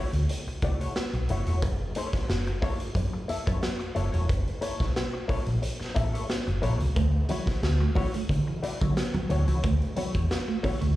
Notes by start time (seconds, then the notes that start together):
Already playing: A3 E4 F#4 C#5
0.13 D2, muted hollow-body jazz guitar stroke, closed hi-hat
0.29 muted hollow-body jazz guitar stroke, closed hi-hat
0.47 muted fingered electric bass stroke, muted hollow-body jazz guitar stroke, closed hi-hat
0.62 C#2 A3 E4 F#4 D5, kick, closed hi-hat
0.81 A3 E4 F#4 C#5, closed hi-hat
0.96 muted hollow-body jazz guitar stroke, snare, closed hi-hat
1.13 B1, muted hollow-body jazz guitar stroke, closed hi-hat
1.29 F#1 A3 E4 F#4 C#5, closed hi-hat
1.47 E1 A3 E4 F#4 C#5, closed hi-hat
1.62 F#1, kick, closed hi-hat
1.95 A#3 E4 A4 C#5, closed hi-hat
2.13 muted fingered electric bass stroke, kick, snare, closed hi-hat
2.29 F#1, snare, closed hi-hat
2.47 muted hollow-body jazz guitar stroke, closed hi-hat
2.62 A#3 E4 A4 C#5, kick, open hi-hat
2.80 muted hollow-body jazz guitar stroke, closed hi-hat
2.95 F#2, muted hollow-body jazz guitar stroke, kick, closed hi-hat
3.13 muted hollow-body jazz guitar stroke
3.28 A#3 E4 A4 E5, muted fingered electric bass stroke, closed hi-hat
3.46 F#2 A#3 E4 A4 C#5, kick, closed hi-hat
3.62 muted hollow-body jazz guitar stroke, snare, closed hi-hat
3.79 muted hollow-body jazz guitar stroke, closed hi-hat
3.95 F#1 A#3 E4 A4 C#5, closed hi-hat
4.12 E1 A#3 E4 A4 C#5, closed hi-hat
4.29 F#1, kick, closed hi-hat
4.47 closed hi-hat
4.61 A#3 E4 A4 C#5, closed hi-hat
4.80 B1, kick, snare, closed hi-hat
4.96 snare, closed hi-hat
5.13 muted hollow-body jazz guitar stroke
5.28 A#3 E4 A4 C#5, muted fingered electric bass stroke, kick, open hi-hat
5.46 A#1, muted hollow-body jazz guitar stroke, closed hi-hat
5.62 muted hollow-body jazz guitar stroke, closed hi-hat
5.80 muted hollow-body jazz guitar stroke, muted fingered electric bass stroke, snare
5.95 A1 A#3 E4 A4 E5, kick, closed hi-hat
6.13 A#3 E4 A4 C#5, closed hi-hat
6.29 muted hollow-body jazz guitar stroke, snare, closed hi-hat
6.47 F#1, muted hollow-body jazz guitar stroke, closed hi-hat
6.62 A#1 A#3 E4 A4 C#5, closed hi-hat
6.80 C#2, muted hollow-body jazz guitar stroke, closed hi-hat
6.96 D2 A3, kick, closed hi-hat, muted conga
7.29 F#3 A3 E4 F#4 C#5, closed hi-hat, muted conga, high conga
7.46 muted fingered electric bass stroke, muted clean electric guitar stroke, kick, snare, closed hi-hat, high conga
7.63 D2, snare, closed hi-hat, muted conga
7.80 A3, muted hollow-body jazz guitar stroke
7.95 A3 E4 F#4 C#5, muted clean electric guitar stroke, kick, open hi-hat, muted conga, high conga, low conga
8.14 A3, muted hollow-body jazz guitar stroke, closed hi-hat
8.29 D3, muted hollow-body jazz guitar stroke, kick, closed hi-hat, muted conga, high conga
8.47 E3, muted hollow-body jazz guitar stroke
8.62 A3 E4 F#4 D5, muted fingered electric bass stroke, muted clean electric guitar stroke, closed hi-hat, muted conga
8.80 D3 F#3 A3 E4 F#4 C#5, kick, closed hi-hat
8.96 muted hollow-body jazz guitar stroke, snare, closed hi-hat, muted conga
9.14 F#3, muted hollow-body jazz guitar stroke, closed hi-hat, high conga, low conga
9.29 D2 A3 E4 F#4 C#5, muted clean electric guitar stroke, closed hi-hat, muted conga, low conga
9.47 C#2 E3 A3 E4 F#4 C#5, closed hi-hat
9.63 D2 A3, kick, closed hi-hat
9.82 closed hi-hat
9.96 F#3 A3 E4 F#4 C#5, closed hi-hat, high conga
10.14 E2, muted clean electric guitar stroke, kick, closed hi-hat, high conga
10.31 snare, closed hi-hat, muted conga
10.48 A3, muted hollow-body jazz guitar stroke
10.63 A3 E4 F#4 C#5, muted clean electric guitar stroke, muted fingered electric bass stroke, kick, open hi-hat, high conga, low conga
10.81 D2 A3, muted hollow-body jazz guitar stroke, closed hi-hat